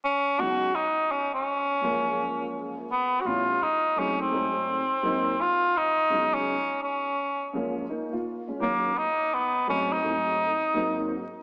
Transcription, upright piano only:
0.38 0.67 C#3 medium
0.38 0.67 F#3 medium
0.38 0.68 G#3 medium
0.38 0.68 B3 medium
0.38 0.69 D#4 medium
1.81 2.84 F#2 medium
1.81 2.84 F3 medium
1.81 2.85 G#3 medium
1.81 2.85 A#3 medium
1.81 2.86 C#4 medium
3.24 3.53 A2 medium
3.24 3.53 E3 medium
3.24 3.54 G3 medium
3.24 3.54 B3 medium
3.24 3.54 C#4 medium
3.96 4.31 F#3 medium
3.96 4.50 G#3 medium
3.96 4.31 A3 medium
3.96 4.32 C4 medium
3.96 4.33 D#4 medium
4.31 4.77 G#2 medium
4.31 4.77 F#3 medium
4.31 4.78 A3 soft
4.31 4.78 C4 soft
4.31 4.78 D#4 medium
5.02 5.31 G#2 medium
5.02 5.31 F#3 medium
5.02 5.32 A#3 medium
5.02 5.32 C4 medium
5.02 5.32 D#4 medium
6.10 6.55 C#3 medium
6.10 6.56 F#3 medium
6.10 6.56 G#3 medium
6.10 6.56 B3 medium
6.10 6.57 D#4 medium
7.53 7.81 F#2 medium
7.53 7.82 F3 medium
7.53 7.82 G#3 medium
7.53 7.83 A#3 medium
7.53 7.83 C#4 medium
7.89 8.11 A#3 medium
7.89 8.11 D#4 medium
8.12 8.47 A#3 medium
8.12 8.46 F4 medium
8.48 8.82 G#3 medium
8.48 8.61 C#4 medium
8.60 8.88 D#3 medium
8.60 8.89 F#3 medium
8.60 8.89 A#3 medium
8.60 8.90 C#4 medium
9.67 9.95 G#2 medium
9.67 9.96 F#3 medium
9.67 9.96 A3 medium
9.67 9.97 C4 medium
9.67 9.97 D#4 medium
10.02 10.48 G#2 medium
10.02 10.48 F#3 soft
10.02 10.49 A3 soft
10.02 10.49 C4 medium
10.02 10.50 D#4 medium
10.73 11.19 G#2 medium
10.73 11.20 F#3 medium
10.73 11.20 A#3 medium
10.73 11.20 C4 medium
10.73 11.21 D#4 medium

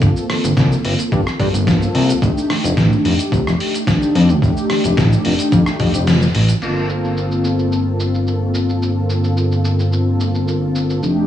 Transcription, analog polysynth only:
0.00 1.63 A#3 medium
0.00 1.64 C4 medium
0.00 1.64 F4 medium
0.00 1.64 A4 medium
1.67 2.19 A#3 medium
1.67 2.19 C4 medium
1.67 2.19 F4 medium
1.67 2.19 A4 medium
2.21 3.84 A3 medium
2.21 3.84 D4 medium
2.21 3.84 D#4 medium
2.21 3.85 G4 medium
3.87 4.39 A3 medium
3.87 4.39 D4 medium
3.87 4.39 D#4 medium
3.87 4.39 G4 medium
4.41 6.04 A3 medium
4.41 6.04 D4 medium
4.41 6.04 D#4 medium
4.41 6.05 G4 medium
6.62 10.99 A#3 medium
6.62 11.00 C4 medium
6.62 11.00 F4 medium
6.62 11.00 A4 medium
11.02 11.27 A3 medium
11.02 11.27 D4 medium
11.02 11.27 D#4 medium
11.02 11.27 G4 medium

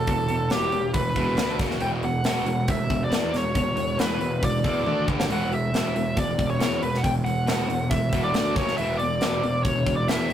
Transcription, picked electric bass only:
0.08 0.48 E1 medium
0.51 0.71 E1 medium
0.72 0.93 E1 medium
0.94 1.15 E1 medium
1.16 1.36 E1 medium
1.37 1.58 D2 medium
1.59 1.80 F#1 medium
1.81 2.22 E1 medium
2.23 2.44 E1 medium
2.45 2.66 E1 medium
2.68 2.89 E1 medium
2.90 3.10 E1 medium
3.11 3.32 E2 medium
3.33 3.54 E1 medium
3.55 3.96 E1 medium
3.99 4.19 E1 medium
4.20 4.41 E1 medium
4.42 4.63 E1 medium
4.65 4.85 E2 medium
4.86 5.06 D2 medium
5.08 5.28 G1 medium
5.30 5.71 E1 medium
5.72 5.93 E1 medium
5.95 6.15 E1 medium
6.17 6.37 E1 medium
6.39 6.59 E1 medium
6.59 6.80 E2 medium
6.82 7.02 E1 medium
7.05 7.45 E1 medium
7.47 7.68 E1 medium
7.68 7.89 E1 medium
7.91 8.11 E1 medium
8.13 8.33 E1 medium
8.33 8.54 D2 medium
8.56 8.76 F#1 medium
8.78 9.18 E1 medium
9.21 9.41 E1 medium
9.43 9.63 E1 medium
9.65 9.85 E1 medium
9.86 10.06 E1 medium
10.09 10.29 E2 medium
10.30 10.33 E1 medium

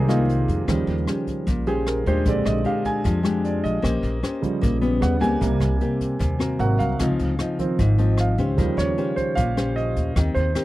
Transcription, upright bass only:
0.00 0.44 C2 loud
0.48 0.66 F2 medium
0.68 0.86 D#2 medium
0.87 1.06 D#2 medium
1.47 2.02 A#1 loud
2.06 2.24 D#2 medium
2.26 2.44 A#1 medium
2.46 2.64 A#1 medium
3.05 3.60 F2 loud
3.64 3.82 A#1 medium
3.84 4.02 A#1 medium
4.03 4.22 A#1 loud
4.63 5.00 A#1 loud
5.02 5.20 D#2 medium
5.22 5.40 C#2 medium
5.42 5.60 C2 medium
5.60 5.79 C2 medium
6.21 6.58 D#2 loud
6.59 6.78 G#1 loud
6.80 6.98 C2 medium
7.00 7.18 C#2 medium
7.19 7.38 C#2 medium
7.79 8.34 G#1 medium
8.38 8.57 C#2 medium
8.58 8.77 D#2 medium
8.77 8.96 D#2 medium
9.37 9.92 A#1 medium
9.96 10.15 D#2 medium
10.16 10.35 D#2 loud
10.35 10.54 D#2 medium

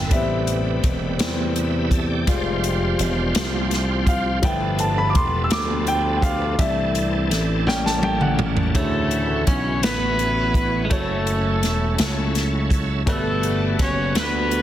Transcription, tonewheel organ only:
0.00 0.12 F3 medium
0.00 0.12 B3 medium
0.00 0.12 E4 medium
0.00 0.12 A4 medium
0.13 2.25 A3 medium
0.13 0.19 B3 soft
0.13 2.24 G4 soft
0.13 1.54 B4 medium
0.21 2.28 C3 medium
1.57 1.91 B4 medium
1.57 1.90 E5 medium
1.91 2.08 E5 medium
1.91 2.08 A5 medium
2.10 2.44 D5 soft
2.10 2.44 G5 medium
2.27 4.39 F3 medium
2.27 4.39 F4 medium
2.27 4.39 G4 medium
2.27 4.39 C5 medium
4.44 6.56 F3 medium
4.44 6.56 B3 medium
4.44 6.55 D4 medium
4.44 6.55 A4 medium
6.59 7.67 E3 medium
6.59 7.67 C4 medium
6.59 7.67 D4 medium
6.59 7.65 A4 medium
7.66 8.75 G3 medium
7.66 8.75 A#3 medium
7.66 8.74 C#4 medium
7.66 8.75 A4 medium
8.74 10.87 E3 medium
8.74 10.87 C#4 medium
8.74 10.87 E4 soft
8.74 10.87 F#4 medium
10.91 13.03 F#3 medium
10.91 13.03 C#4 soft
10.91 13.03 E4 soft
10.91 13.03 A4 medium
13.08 14.62 G3 medium
13.08 14.62 B3 medium
13.08 14.62 F#4 soft
13.08 14.62 A4 medium

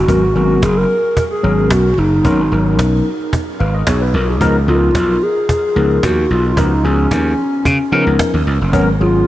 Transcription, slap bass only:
0.09 0.30 G#1 loud
0.36 0.57 G#1 medium
0.62 0.84 F#1 medium
1.44 1.71 G#1 medium
1.71 1.92 B1 loud
1.98 2.19 F#1 loud
2.25 2.46 G#1 loud
2.52 2.79 G#1 medium
2.79 3.00 B1 medium
3.60 3.81 G#1 medium
3.87 4.08 B1 medium
4.14 4.35 B1 medium
4.41 4.62 C#2 loud
4.68 4.89 C#2 medium
4.95 5.16 B1 medium
5.76 5.97 C#2 medium
6.03 6.25 D#2 medium
6.30 6.52 B1 medium
6.57 6.79 C#2 loud
6.84 7.06 C#2 medium
7.11 7.33 D#2 medium
7.65 7.77 C#3 medium
7.92 8.04 C#3 loud
8.07 8.17 C#2 medium
8.34 8.44 D#2 medium
8.47 8.58 C#2 loud
8.61 8.73 F#1 medium
8.73 8.95 G#1 loud
9.01 9.22 G#1 medium

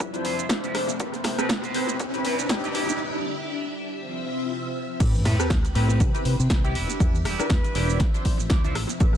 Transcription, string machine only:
0.00 0.99 F3 medium
0.00 2.72 C4 medium
0.00 0.98 E5 medium
1.00 1.99 G5 medium
1.00 2.73 B5 medium
2.00 3.98 E5 medium
2.75 3.99 D4 medium
2.75 3.99 G4 medium
4.00 4.99 C4 medium
4.00 4.99 F4 medium
4.00 4.99 E5 medium
5.00 6.74 C4 medium
5.00 6.74 B4 medium
5.00 5.99 G5 medium
6.00 8.97 E5 medium
6.75 7.99 D4 medium
6.75 7.99 G4 medium
8.01 8.99 F3 medium
8.01 9.17 C4 medium
9.01 9.17 B4 medium
9.01 9.17 G5 medium

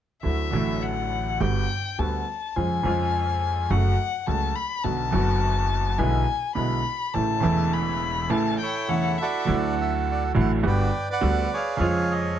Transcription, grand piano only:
0.23 0.48 D2 soft
0.23 0.48 D3 soft
0.23 0.48 F#3 soft
0.23 0.48 A3 soft
0.23 0.48 E4 soft
0.51 1.36 A1 soft
0.51 1.36 A2 soft
0.51 1.35 D3 soft
0.51 1.36 F#3 soft
0.51 1.36 A3 soft
0.55 1.37 E4 soft
1.40 1.65 G1 medium
1.40 1.65 G2 soft
1.40 1.65 D3 soft
1.40 1.65 G3 soft
1.40 1.65 B3 soft
1.40 1.65 F#4 soft
1.99 2.23 D2 soft
1.99 2.23 D3 soft
1.99 2.23 G3 soft
1.99 2.23 B3 soft
1.99 2.23 F#4 soft
2.56 2.80 F2 soft
2.56 2.80 C#3 soft
2.56 2.80 F3 soft
2.56 2.80 G#3 soft
2.56 2.80 F4 soft
2.83 3.66 F2 medium
2.83 3.65 C#3 soft
2.83 3.66 F3 medium
2.83 3.67 G#3 soft
2.83 3.67 F4 soft
3.70 3.95 F#2 medium
3.70 3.94 C#3 soft
3.70 3.94 F#3 medium
3.70 3.95 A3 soft
3.70 3.95 F#4 medium
4.27 4.52 C#2 soft
4.27 4.51 C#3 soft
4.27 4.51 F#3 soft
4.27 4.51 A3 soft
4.27 4.52 F#4 soft
4.84 5.09 B1 soft
4.84 5.08 B2 soft
4.84 5.09 D3 soft
4.84 5.08 F#3 soft
4.84 5.09 B3 soft
4.84 5.09 F#4 soft
5.11 5.95 F#1 medium
5.11 5.95 F#2 medium
5.11 5.94 D3 medium
5.11 5.94 F#3 soft
5.11 5.95 B3 soft
5.11 5.96 F#4 medium
5.98 6.23 B1 medium
5.98 6.23 B2 medium
5.98 6.23 D3 soft
5.98 6.23 G#3 soft
5.98 6.23 B3 soft
5.98 6.23 E4 medium
6.55 6.80 B1 soft
6.55 6.80 B2 soft
6.55 6.80 D3 soft
6.55 6.80 G#3 soft
6.55 6.80 B3 soft
6.55 6.81 E4 soft
7.14 7.39 A1 soft
7.14 7.39 A2 soft
7.14 7.39 C#3 soft
7.14 7.39 E3 soft
7.14 7.39 A3 soft
7.14 7.39 E4 soft
7.40 8.26 E1 medium
7.40 8.26 E2 medium
7.40 8.25 C#3 medium
7.40 8.25 E3 soft
7.40 8.26 A3 soft
7.44 8.27 E4 medium
8.30 8.55 A1 medium
8.30 8.55 A2 medium
8.30 8.55 C#3 soft
8.30 8.55 E3 soft
8.30 8.55 A3 soft
8.30 8.55 E4 medium
8.88 9.14 E1 soft
8.88 9.14 E2 soft
8.88 9.14 C#3 soft
8.88 9.14 E3 soft
8.88 9.14 A3 soft
8.88 9.14 E4 soft
9.45 10.30 D2 medium
9.45 9.47 D3 medium
9.45 10.30 D3 medium
9.45 10.30 F#3 soft
9.45 10.31 A3 soft
9.45 10.31 E4 medium
10.34 10.59 A1 medium
10.34 10.60 A2 medium
10.34 10.59 D3 medium
10.34 10.59 F#3 medium
10.34 10.59 A3 medium
10.34 10.59 E4 medium
10.63 10.88 G1 medium
10.63 10.88 G2 medium
10.63 10.88 D3 medium
10.63 10.88 G3 soft
10.63 10.88 B3 medium
10.63 10.88 F#4 medium
11.21 11.46 D2 medium
11.21 11.46 D3 medium
11.21 11.46 G3 medium
11.21 11.46 B3 medium
11.21 11.46 F#4 medium
11.77 12.39 F2 medium
11.77 12.39 C#3 medium
11.77 12.39 F3 medium
11.77 12.39 G#3 soft
11.81 12.39 F4 medium

